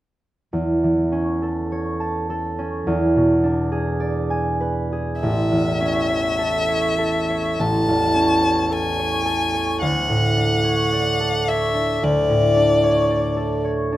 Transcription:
0.53 2.86 E2 soft
0.83 2.91 E3 soft
1.12 2.57 C#4 soft
1.42 2.29 A4 soft
1.72 2.91 C#5 soft
2.00 2.90 A5 soft
2.30 2.91 A4 soft
2.59 2.91 C#4 soft
2.87 5.26 E2 soft
3.16 5.27 B2 soft
3.43 5.27 D4 soft
3.72 4.91 G#4 soft
4.00 5.26 D5 soft
4.30 5.27 G#5 soft
4.60 5.26 B4 soft
4.92 5.27 G#4 soft
5.21 7.58 A1 soft
5.21 7.61 E5 medium
5.52 7.87 E2 soft
5.80 8.13 C#4 soft
6.10 6.67 C#5 soft
6.39 6.97 A4 soft
6.68 7.29 C#5 soft
6.98 8.69 A4 soft
7.30 8.42 C#5 soft
7.59 9.86 A1 soft
7.59 8.74 A5 medium
7.88 9.86 E2 soft
8.15 12.05 C#4 soft
8.43 8.98 C#5 soft
8.70 9.24 A4 soft
8.70 9.81 G#5 medium
8.99 9.53 C#5 soft
9.26 11.19 A4 soft
9.54 10.63 C#5 soft
9.82 12.02 D2 soft
9.82 11.50 F#5 medium
10.09 12.28 A2 soft
10.36 11.73 D4 soft
10.64 11.47 C#5 soft
10.92 13.09 D5 soft
11.20 13.35 A4 soft
11.48 12.82 C#5 soft
11.48 12.05 E5 medium
11.74 12.55 D4 soft
12.03 13.97 D2 soft
12.03 13.66 D5 medium
12.29 13.97 A2 soft
12.56 13.91 D4 soft
12.83 13.63 C#5 soft
13.10 13.97 D5 soft
13.36 13.97 A4 soft
13.65 13.97 C#5 soft
13.92 13.97 D4 soft

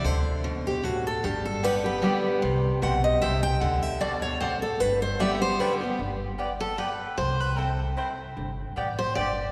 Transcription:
0.04 0.80 D2 loud
0.04 0.80 D3 medium
0.04 0.67 C5 medium
0.44 0.82 B2 medium
0.67 0.85 G4 medium
0.84 1.22 A2 medium
0.84 1.06 F#4 medium
1.07 1.24 A4 medium
1.24 2.00 G1 medium
1.24 2.00 G2 medium
1.24 1.45 G4 medium
1.45 1.64 A4 medium
1.63 1.84 D3 medium
1.63 1.85 G3 medium
1.63 1.73 B3 medium
1.63 1.85 B3 medium
1.63 1.73 G4 loud
1.63 1.83 G4 medium
1.63 1.85 B4 medium
1.63 1.74 D5 medium
1.63 1.74 G5 loud
1.84 2.02 B3 medium
1.84 2.02 G4 medium
1.84 2.79 B4 medium
2.02 2.40 D3 medium
2.02 2.41 G3 medium
2.02 2.13 B3 medium
2.02 2.41 B3 medium
2.02 2.13 G4 medium
2.02 2.41 G4 medium
2.02 2.13 D5 medium
2.02 2.13 G5 loud
2.42 2.68 C2 loud
2.42 3.18 C3 medium
2.82 3.16 B1 medium
2.82 3.20 B2 medium
2.82 2.92 C4 medium
2.82 2.92 E4 medium
2.82 2.93 C5 loud
2.82 3.04 F#5 medium
2.82 2.93 G5 loud
3.04 3.21 D#5 loud
3.21 3.56 C2 medium
3.21 3.60 C3 medium
3.21 3.32 C4 medium
3.21 3.32 E4 loud
3.21 3.32 C5 loud
3.21 3.42 E5 medium
3.21 3.32 G5 loud
3.43 3.61 G5 loud
3.61 4.37 D2 loud
3.61 4.37 D3 medium
3.61 3.83 F#5 medium
3.83 4.00 E5 loud
4.00 4.39 B2 medium
4.00 4.11 C4 medium
4.00 4.11 F#4 loud
4.00 4.22 D5 medium
4.00 4.11 D5 medium
4.00 4.12 A5 loud
4.22 4.40 C#5 medium
4.40 4.79 A2 medium
4.40 4.51 C4 medium
4.40 4.51 F#4 loud
4.40 4.62 C5 medium
4.40 4.51 D5 loud
4.40 4.51 A5 loud
4.62 4.80 A4 medium
4.80 5.56 G1 medium
4.80 5.56 G2 medium
4.80 5.02 B4 medium
5.02 5.19 C5 medium
5.19 5.41 D3 medium
5.19 5.41 G3 loud
5.19 5.30 B3 loud
5.19 5.42 B3 loud
5.19 5.30 G4 loud
5.19 5.40 G4 loud
5.19 5.30 D5 loud
5.19 5.41 E5 medium
5.19 5.30 G5 medium
5.41 5.60 B3 medium
5.41 5.59 G4 medium
5.41 5.60 C5 loud
5.59 5.81 D3 medium
5.59 5.81 G3 medium
5.59 5.70 B3 medium
5.59 5.81 B3 medium
5.59 5.70 G4 loud
5.59 5.80 G4 medium
5.59 5.73 B4 medium
5.59 5.70 D5 loud
5.59 5.70 G5 loud
5.81 6.00 B3 soft
5.81 5.98 G4 medium
5.99 6.75 G1 medium
6.38 6.49 B3 medium
6.38 6.49 G4 loud
6.38 6.49 D5 medium
6.38 6.49 G5 medium
6.60 6.78 A4 medium
6.78 6.88 B3 medium
6.78 6.89 G4 loud
6.78 7.15 B4 medium
6.78 6.89 D5 medium
6.78 6.89 G5 loud
7.18 7.94 C2 medium
7.18 7.40 C5 medium
7.40 7.58 B4 medium
7.57 7.67 C4 medium
7.57 7.68 E4 medium
7.57 7.79 A4 medium
7.57 7.68 C5 medium
7.57 7.68 G5 loud
7.97 8.07 C4 medium
7.97 8.07 E4 medium
7.97 8.08 C5 loud
7.97 8.08 G5 loud
8.37 8.62 G1 medium
8.76 9.11 A1 medium
8.76 8.86 B3 medium
8.76 8.87 G4 medium
8.76 8.87 D5 loud
8.76 8.87 G5 loud
8.99 9.15 C5 loud
9.15 9.50 G1 medium
9.15 9.26 B3 medium
9.15 9.26 G4 loud
9.15 9.52 D5 medium
9.15 9.26 D5 loud
9.15 9.27 G5 loud

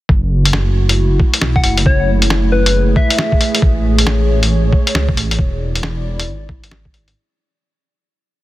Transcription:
0.09 1.19 F#1 loud
0.09 5.35 A3 medium
0.09 3.59 E4 medium
0.09 1.84 F#4 medium
0.09 kick loud
0.45 closed hi-hat medium
0.53 snare loud
0.89 closed hi-hat medium
1.20 kick loud
1.34 closed hi-hat medium
1.41 1.63 B1 medium
1.41 snare loud
1.56 1.61 F#5 medium
1.56 kick loud
1.64 1.85 F#1 medium
1.64 1.73 F#5 medium
1.64 closed hi-hat soft
1.77 closed hi-hat medium
1.86 2.95 F#1 loud
1.86 7.12 G#4 medium
1.86 2.10 C#5 medium
1.86 kick loud
2.22 closed hi-hat medium
2.30 snare loud
2.52 2.95 B4 loud
2.66 closed hi-hat medium
2.96 3.59 E5 loud
2.96 kick loud
3.10 closed hi-hat medium
3.18 snare loud
3.32 kick loud
3.41 closed hi-hat soft
3.55 closed hi-hat medium
3.62 4.72 A1 loud
3.62 5.37 C#5 medium
3.62 kick loud
3.99 closed hi-hat medium
4.07 snare loud
4.43 closed hi-hat medium
4.73 kick loud
4.87 closed hi-hat medium
4.95 5.15 C#2 medium
4.95 snare loud
5.09 kick loud
5.17 5.38 A1 loud
5.17 closed hi-hat soft
5.31 closed hi-hat medium
5.39 6.29 E1 loud
5.39 7.14 E4 medium
5.39 7.14 D5 medium
5.39 kick loud
5.76 closed hi-hat medium
5.83 snare loud
6.20 closed hi-hat medium
6.27 7.14 G#1 medium
6.49 kick loud
6.64 closed hi-hat medium
6.71 snare loud
6.85 kick loud
6.94 closed hi-hat soft
7.08 closed hi-hat medium

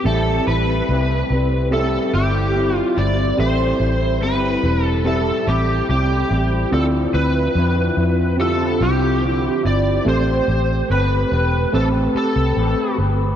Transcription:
0.04 0.38 A1 medium
0.04 0.47 A2 medium
0.04 0.47 G3 medium
0.04 1.56 C4 medium
0.04 0.48 C4 medium
0.04 1.57 G4 medium
0.04 1.57 A4 medium
0.04 0.44 A4 medium
0.04 1.57 E5 medium
0.08 0.46 E4 medium
0.47 0.80 A1 medium
0.47 0.89 G3 soft
0.47 0.90 C4 soft
0.47 0.89 E4 medium
0.47 1.68 B4 medium
0.89 1.22 C2 medium
0.89 1.30 A2 medium
0.89 1.31 G3 medium
0.89 1.31 C4 medium
0.89 1.29 E4 medium
1.30 1.97 C2 medium
1.30 1.72 G3 soft
1.30 1.73 C4 soft
1.30 1.72 E4 soft
1.71 2.14 A2 medium
1.71 2.15 G3 medium
1.71 3.23 C4 medium
1.71 2.14 C4 medium
1.71 2.12 E4 medium
1.71 3.23 G4 medium
1.71 3.24 A4 medium
1.71 2.11 A4 medium
1.71 3.24 E5 medium
2.13 2.80 G1 medium
2.13 2.54 G3 soft
2.13 2.56 C4 soft
2.13 2.55 E4 soft
2.13 2.76 G4 medium
2.55 2.97 A2 medium
2.55 2.97 G3 medium
2.55 2.97 C4 medium
2.55 2.94 E4 medium
2.76 3.00 F4 medium
2.96 3.30 G1 medium
2.96 3.38 G3 soft
2.96 3.39 C4 soft
2.96 3.38 E4 medium
2.96 3.40 D5 medium
3.37 3.72 A1 medium
3.37 3.80 A2 medium
3.37 3.81 G3 medium
3.37 4.90 C4 medium
3.37 3.80 C4 medium
3.37 3.78 E4 medium
3.37 4.90 G4 medium
3.37 4.91 A4 medium
3.37 4.22 C5 loud
3.37 4.91 E5 medium
3.79 4.22 A1 medium
3.79 4.21 G3 soft
3.79 4.23 C4 soft
3.79 4.22 E4 soft
4.21 4.55 G1 medium
4.21 4.64 A2 medium
4.21 4.64 G3 medium
4.21 4.63 C4 medium
4.21 4.61 E4 medium
4.21 4.85 B4 medium
4.62 5.30 E1 medium
4.62 5.04 G3 soft
4.62 5.05 C4 soft
4.62 5.05 E4 medium
4.85 5.06 A4 medium
5.04 5.47 A2 medium
5.04 5.47 G3 medium
5.04 6.57 C4 medium
5.04 5.46 C4 medium
5.04 5.44 E4 medium
5.04 6.57 G4 medium
5.04 5.49 A4 medium
5.04 6.58 A4 medium
5.04 6.58 E5 medium
5.46 5.81 A1 medium
5.46 5.89 G3 soft
5.46 5.89 C4 soft
5.46 5.88 E4 soft
5.46 5.87 G4 medium
5.88 6.23 C2 medium
5.88 6.30 A2 medium
5.88 6.31 G3 medium
5.88 6.30 C4 medium
5.88 6.28 E4 medium
5.88 6.69 G4 medium
6.29 6.64 A1 medium
6.29 6.71 G3 soft
6.29 6.72 C4 soft
6.29 6.72 E4 soft
6.71 7.06 D2 medium
6.71 7.13 D3 medium
6.71 7.14 F3 medium
6.71 8.24 C4 medium
6.71 7.14 C4 medium
6.71 8.24 E4 medium
6.71 7.12 E4 medium
6.71 8.24 F4 medium
6.71 6.84 A4 medium
6.71 8.25 D5 medium
7.14 7.47 D2 medium
7.14 7.55 F3 soft
7.14 7.57 C4 soft
7.14 7.56 E4 medium
7.14 8.35 B4 medium
7.55 7.89 F2 medium
7.55 7.97 D3 medium
7.55 7.98 F3 medium
7.55 7.98 C4 medium
7.55 7.96 E4 medium
7.97 8.82 F2 medium
7.97 8.39 F3 soft
7.97 8.39 C4 soft
7.97 8.39 E4 medium
8.37 8.81 D3 medium
8.37 8.81 F3 medium
8.37 9.90 C4 medium
8.37 8.80 C4 medium
8.37 9.91 E4 medium
8.37 8.79 E4 medium
8.37 9.91 F4 medium
8.37 9.91 G4 medium
8.37 8.83 A4 medium
8.80 9.48 C2 medium
8.80 9.21 F3 soft
8.80 9.23 C4 soft
8.80 9.22 E4 soft
8.80 9.61 G4 medium
9.21 9.64 D3 medium
9.21 9.64 F3 medium
9.21 9.64 C4 medium
9.21 9.61 E4 medium
9.63 9.98 G1 medium
9.63 10.05 F3 soft
9.63 10.05 C4 soft
9.63 10.05 E4 soft
9.63 10.08 D5 medium
10.05 10.40 A1 medium
10.05 11.57 A3 medium
10.05 10.47 A3 medium
10.05 11.58 C4 medium
10.05 10.48 C4 medium
10.05 11.58 G4 medium
10.05 10.47 G4 medium
10.05 11.59 A4 medium
10.05 10.91 C5 medium
10.48 10.81 A1 loud
10.48 10.89 C4 soft
10.48 10.89 G4 soft
10.88 11.23 G1 medium
10.88 11.31 A3 medium
10.88 11.32 C4 medium
10.88 11.31 G4 medium
10.88 11.74 B4 medium
10.88 11.29 B4 medium
11.30 11.65 E1 medium
11.30 11.72 C4 soft
11.30 11.73 G4 medium
11.30 11.72 B4 medium
11.72 12.07 A1 medium
11.72 12.14 A3 medium
11.72 13.25 A3 medium
11.72 13.25 C4 medium
11.72 12.15 C4 medium
11.72 13.25 G4 medium
11.72 12.14 G4 medium
11.72 11.86 A4 medium
11.72 12.13 B4 medium
11.72 13.26 C5 medium
12.14 12.56 C4 soft
12.14 12.57 G4 soft
12.14 12.96 A4 medium
12.14 12.56 B4 soft
12.14 muted fingered electric bass stroke soft
12.36 12.53 C2 medium
12.55 12.73 A1 medium
12.55 12.98 A3 medium
12.55 12.99 C4 medium
12.55 12.99 G4 medium
12.55 12.97 B4 medium
12.98 13.32 G1 medium
12.98 13.36 C4 soft
12.98 13.36 G4 soft
12.98 13.36 B4 medium

